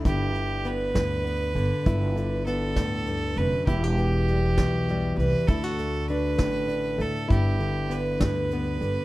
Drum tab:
HH |xxxxxx|xxxxxx|xxxxxx|xxxxxx|
SD |---o--|---o--|---o--|---o--|
BD |o--o--|o--o--|o--o--|o--o--|

HH |xxxxxx|
SD |---o--|
BD |o--o--|